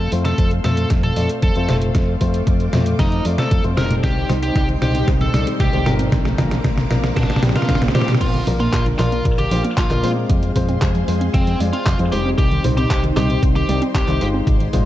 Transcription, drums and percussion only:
0.12 open hi-hat loud
0.25 snare soft
0.25 closed hi-hat soft
0.38 kick loud
0.38 closed hi-hat medium
0.51 closed hi-hat soft
0.64 snare medium
0.64 open hi-hat medium
0.64 high conga medium
0.77 closed hi-hat medium
0.90 kick loud
0.90 snare medium
0.90 closed hi-hat medium
1.03 closed hi-hat soft
1.03 high conga medium
1.16 open hi-hat loud
1.29 closed hi-hat medium
1.42 kick loud
1.42 closed hi-hat medium
1.56 closed hi-hat soft
1.69 snare medium
1.69 open hi-hat medium
1.69 high conga medium
1.82 closed hi-hat medium
1.95 kick loud
1.95 snare medium
1.95 closed hi-hat medium
2.21 kick medium
2.21 open hi-hat loud
2.34 closed hi-hat medium
2.47 kick loud
2.47 closed hi-hat medium
2.60 closed hi-hat soft
2.73 snare medium
2.73 open hi-hat medium
2.73 high conga medium
2.86 closed hi-hat medium
2.99 kick loud
2.99 snare medium
2.99 closed hi-hat medium
3.12 closed hi-hat soft
3.25 open hi-hat loud
3.38 snare medium
3.38 closed hi-hat medium
3.51 kick loud
3.51 closed hi-hat medium
3.64 closed hi-hat soft
3.77 snare medium
3.77 open hi-hat medium
3.91 closed hi-hat medium
3.91 high conga medium
4.03 kick loud
4.03 snare medium
4.03 closed hi-hat medium
4.29 snare medium
4.29 open hi-hat loud
4.43 closed hi-hat soft
4.56 kick loud
4.56 snare medium
4.56 closed hi-hat medium
4.69 closed hi-hat soft
4.82 snare medium
4.82 open hi-hat medium
4.82 high conga medium
4.95 closed hi-hat medium
5.08 kick loud
5.08 snare medium
5.08 closed hi-hat medium
5.21 closed hi-hat soft
5.21 high conga medium
5.34 snare medium
5.34 open hi-hat loud
5.47 closed hi-hat medium
5.60 kick loud
5.60 snare medium
5.60 closed hi-hat medium
5.73 closed hi-hat soft
5.86 snare medium
5.86 open hi-hat medium
5.86 high conga medium
5.99 closed hi-hat soft
6.12 kick loud
6.12 snare medium
6.12 closed hi-hat medium
6.25 snare medium
6.38 kick medium
6.38 snare loud
6.38 open hi-hat loud
6.51 snare medium
6.51 closed hi-hat soft
6.64 kick loud
6.64 snare loud
6.64 closed hi-hat medium
6.78 snare medium
6.78 closed hi-hat soft
6.91 snare medium
6.91 open hi-hat medium
6.91 high conga medium
7.04 snare medium
7.04 closed hi-hat medium
7.16 kick loud
7.16 snare loud
7.16 closed hi-hat medium
7.23 snare medium
7.30 snare medium
7.30 closed hi-hat soft
7.36 snare medium
7.43 snare loud
7.43 open hi-hat loud
7.49 snare medium
7.56 snare medium
7.56 closed hi-hat medium
7.62 snare medium
7.69 kick loud
7.69 snare loud
7.69 closed hi-hat medium
7.75 snare medium
7.82 snare medium
7.82 closed hi-hat soft
7.88 snare medium
7.95 snare loud
7.95 open hi-hat medium
8.01 snare loud
8.08 snare loud
8.08 closed hi-hat soft
8.08 high conga medium
8.14 snare loud
8.21 kick loud
8.21 closed hi-hat loud
8.21 crash loud
8.34 closed hi-hat soft
8.47 open hi-hat loud
8.47 high conga medium
8.60 closed hi-hat soft
8.73 kick loud
8.73 clap loud
8.73 closed hi-hat loud
8.86 closed hi-hat soft
8.99 clap medium
8.99 open hi-hat medium
8.99 high conga medium
9.12 closed hi-hat soft
9.25 kick loud
9.25 closed hi-hat loud
9.38 closed hi-hat soft
9.51 open hi-hat loud
9.64 closed hi-hat soft
9.77 kick loud
9.77 clap loud
9.77 closed hi-hat loud
9.90 clap soft
9.90 closed hi-hat soft
10.04 open hi-hat medium
10.30 kick loud
10.30 closed hi-hat medium
10.43 closed hi-hat soft
10.56 kick medium
10.56 open hi-hat loud
10.56 high conga medium
10.69 closed hi-hat soft
10.82 kick loud
10.82 clap loud
10.82 closed hi-hat medium
10.95 closed hi-hat soft
11.08 open hi-hat medium
11.21 closed hi-hat soft
11.34 kick loud
11.34 closed hi-hat medium
11.47 closed hi-hat soft
11.60 open hi-hat loud
11.73 closed hi-hat soft
11.86 kick loud
11.86 clap loud
11.86 closed hi-hat medium
11.99 closed hi-hat soft
12.12 open hi-hat medium
12.38 kick loud
12.38 closed hi-hat medium
12.52 closed hi-hat soft
12.64 open hi-hat loud
12.64 high conga medium
12.78 closed hi-hat soft
12.90 kick loud
12.90 clap loud
12.90 closed hi-hat loud
13.04 closed hi-hat soft
13.17 clap medium
13.17 open hi-hat medium
13.17 high conga medium
13.30 closed hi-hat soft
13.43 kick loud
13.43 closed hi-hat medium
13.56 closed hi-hat soft
13.69 open hi-hat loud
13.82 closed hi-hat soft
13.95 kick loud
13.95 clap loud
13.95 closed hi-hat medium
14.08 clap soft
14.08 closed hi-hat soft
14.21 open hi-hat medium
14.47 kick loud
14.47 closed hi-hat medium
14.60 closed hi-hat soft
14.73 kick medium
14.73 open hi-hat loud
14.73 high conga medium

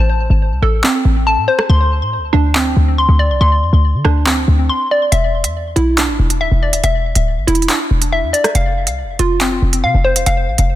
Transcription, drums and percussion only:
0.84 clap loud
1.59 cross-stick loud
2.55 clap loud
4.05 cross-stick medium
4.26 clap loud
5.12 closed hi-hat medium
5.44 closed hi-hat medium
5.76 closed hi-hat medium
5.98 clap loud
5.98 closed hi-hat medium
6.30 closed hi-hat medium
6.73 closed hi-hat medium
6.84 closed hi-hat medium
7.15 closed hi-hat medium
7.48 closed hi-hat medium
7.55 closed hi-hat medium
7.62 closed hi-hat soft
7.69 clap loud
7.69 closed hi-hat medium
8.02 closed hi-hat medium
8.34 closed hi-hat medium
8.44 cross-stick loud
8.44 closed hi-hat medium
8.55 closed hi-hat medium
8.87 closed hi-hat medium
9.19 closed hi-hat medium
9.41 clap loud
9.41 closed hi-hat medium
9.73 closed hi-hat medium
10.16 closed hi-hat medium
10.26 closed hi-hat medium
10.58 closed hi-hat medium

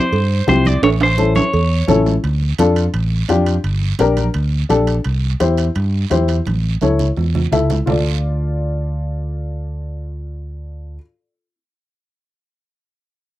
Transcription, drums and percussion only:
0.13 cowbell medium
0.13 high conga soft
0.13 long guiro medium
0.48 cowbell medium
0.48 high conga medium
0.48 low timbale medium
0.48 short guiro medium
0.65 high conga medium
0.65 short guiro medium
0.83 cowbell loud
0.83 high timbale medium
0.83 long guiro medium
1.00 high conga soft
1.00 high timbale loud
1.18 cowbell medium
1.18 high conga medium
1.18 short guiro medium
1.35 high conga medium
1.35 high timbale medium
1.35 short guiro medium
1.53 cowbell medium
1.53 high conga soft
1.53 long guiro medium
1.88 cowbell medium
1.88 high conga medium
1.88 low conga medium
1.88 low timbale medium
1.88 short guiro medium
2.06 low timbale medium
2.06 short guiro medium
2.24 high timbale medium
2.24 long guiro medium
2.42 high conga soft
2.59 high conga medium
2.59 high timbale medium
2.59 short guiro medium
2.76 high timbale medium
2.76 short guiro medium
2.94 high conga soft
2.94 high timbale medium
2.94 long guiro medium
3.29 high conga medium
3.29 high timbale medium
3.29 short guiro medium
3.46 high timbale medium
3.46 short guiro medium
3.64 high timbale medium
3.64 long guiro medium
3.82 high conga soft
3.99 high conga medium
3.99 high timbale medium
3.99 short guiro medium
4.17 high conga medium
4.17 high timbale medium
4.17 short guiro medium
4.34 high conga soft
4.34 high timbale medium
4.34 long guiro medium
4.70 high conga medium
4.70 high timbale medium
4.70 short guiro medium
4.87 high timbale medium
4.87 short guiro medium
5.04 high timbale medium
5.04 long guiro medium
5.23 high conga soft
5.40 high conga medium
5.40 high timbale medium
5.40 short guiro medium
5.58 high timbale medium
5.58 short guiro medium
5.75 high conga soft
5.75 high timbale medium
5.75 long guiro medium
6.11 high conga medium
6.11 high timbale medium
6.11 low timbale medium
6.11 short guiro medium
6.28 high timbale medium
6.28 short guiro medium
6.46 high conga medium
6.46 high timbale medium
6.46 long guiro medium
6.81 high conga medium
6.81 high timbale medium
6.81 short guiro medium
6.99 low conga medium
6.99 short guiro medium
7.17 low timbale medium
7.17 long guiro medium
7.35 low conga medium
7.35 low timbale medium
7.52 low conga medium
7.52 low timbale medium
7.52 short guiro medium
7.70 low conga medium
7.70 low timbale medium
7.70 short guiro medium
7.87 low conga medium
7.87 low timbale medium
7.87 long guiro medium

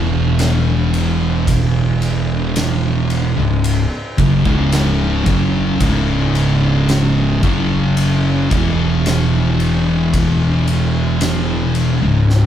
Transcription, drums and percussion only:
0.39 snare loud
0.39 ride medium
0.94 ride medium
1.47 kick loud
1.47 ride medium
2.02 ride medium
2.56 snare loud
2.56 ride medium
3.10 ride medium
3.64 ride medium
4.18 kick loud
4.18 ride medium
4.45 kick loud
4.72 snare loud
4.72 ride medium
5.26 kick loud
5.26 ride medium
5.80 kick loud
5.80 ride medium
6.35 ride medium
6.89 snare loud
6.89 ride medium
7.43 kick loud
7.43 ride medium
7.97 ride medium
8.51 kick loud
8.51 ride medium
9.06 snare loud
9.06 ride medium
9.60 ride medium
10.14 kick loud
10.14 ride medium
10.68 ride medium
11.21 snare loud
11.21 ride loud
11.75 ride medium
12.30 snare medium

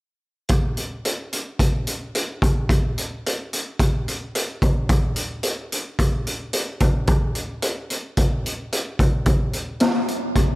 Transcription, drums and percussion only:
0.49 kick medium
0.49 closed hi-hat medium
0.77 closed hi-hat medium
1.05 closed hi-hat medium
1.33 closed hi-hat medium
1.59 kick medium
1.59 closed hi-hat medium
1.87 closed hi-hat medium
2.15 closed hi-hat medium
2.42 kick medium
2.42 closed hi-hat medium
2.69 kick medium
2.69 closed hi-hat medium
2.98 closed hi-hat medium
3.26 closed hi-hat medium
3.53 closed hi-hat medium
3.79 kick medium
3.79 closed hi-hat medium
4.08 closed hi-hat soft
4.35 closed hi-hat medium
4.62 kick medium
4.62 closed hi-hat medium
4.89 kick medium
4.89 closed hi-hat medium
5.16 closed hi-hat medium
5.43 closed hi-hat medium
5.72 closed hi-hat medium
5.99 kick medium
5.99 closed hi-hat medium
6.27 closed hi-hat medium
6.53 closed hi-hat medium
6.80 kick medium
6.80 closed hi-hat medium
7.07 kick medium
7.07 closed hi-hat medium
7.35 closed hi-hat medium
7.62 closed hi-hat medium
7.90 closed hi-hat medium
8.17 kick medium
8.17 closed hi-hat medium
8.46 closed hi-hat medium
8.72 closed hi-hat medium
8.99 kick medium
8.99 closed hi-hat medium
9.26 kick medium
9.26 closed hi-hat medium
9.53 closed hi-hat medium
9.80 snare medium
9.80 closed hi-hat medium
10.08 closed hi-hat medium
10.36 kick medium
10.36 closed hi-hat medium

